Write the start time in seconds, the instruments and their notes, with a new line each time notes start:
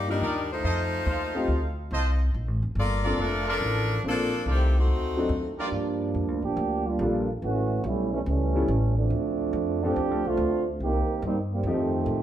Already playing: upright bass G2
0.07 saxophone section G3 D#4 A#4, grand piano A#3 D4 D#4 F4 G4
0.11 saxophone section D4
0.21 upright bass D#2, trumpet section D#4 G4 A#4 D5
0.53 saxophone section A3 D#4 F4 C5
0.63 upright bass F2, trumpet section F4 A4 C5 D#5
1.06 upright bass D#2, trumpet section F4 A4 C5 F5
1.35 grand piano A3 C4 D#4 F4 G4
1.48 upright bass D2
1.91 upright bass C2, trumpet section F4 A4 C5 D#5
2.34 upright bass A#1
2.47 upright bass A1
2.62 upright bass F1
2.75 upright bass G1
2.79 saxophone section A#3 F4 A4 D5
3.04 grand piano A#3 C4 D4 F4 A4, trumpet section F4 A4 A#4 D5
3.18 upright bass F1, saxophone section F3 A3 D4 A#4
3.45 trumpet section F4 A4 A#4 D5
3.50 saxophone section F3 D4 A4 A#4
3.61 upright bass A1
4.03 upright bass A#1, grand piano A#3 C4 D4 F4 A4
4.09 saxophone section F3 A#3 D4 A4
4.45 upright bass C2, trumpet section F4 A4 A#4 D5
4.51 saxophone section D#3 A3 C4 G4
4.78 saxophone section A3 C4 D#4 F#4
4.88 upright bass D2
5.17 grand piano F#3 C4 D4 D#4 A4
5.29 upright bass D#2
5.57 trombone section F3 G3 A#3 D4, trumpet section F4 G4 A#4 D5
5.71 upright bass G2
6.14 upright bass F2
6.28 upright bass D2
6.42 upright bass A#1, trombone section F3 A#3 D4 G4
6.57 upright bass D2
6.84 trombone section G3 A#3 D4 F4
6.99 upright bass A#1, grand piano G3 A#3 D4 F4 A4
7.42 upright bass A1, trombone section E3 A3 C#4 F#4
7.84 upright bass B1, trombone section G3 A3 C#4 E4
8.12 trombone section E3 G3 A3 C#4
8.26 upright bass C#2, trombone section E3 G3 A3 C#4
8.55 grand piano G3 B3 C#4 E4 A4
8.68 upright bass A1
8.96 trombone section F3 A3 C4 D4
9.10 upright bass D2
9.53 upright bass F2
9.82 trombone section F3 C4 D4 G4, grand piano F3 A3 C4 D4 A4
9.96 upright bass D#2
10.11 upright bass D2
10.25 upright bass C2, trombone section A3 C4 D4 F4
10.37 upright bass D2
10.80 upright bass C2, trombone section D#3 A#3 C4 G4
11.08 muted upright bass stroke
11.22 upright bass G2, trombone section G3 A#3 C4 D#4
11.52 trombone section D#3 G3 A#3 C4
11.63 upright bass F2, trombone section D#3 F3 A3 C4, grand piano F3 A3 C4 D#4
11.68 grand piano G4
12.06 upright bass A2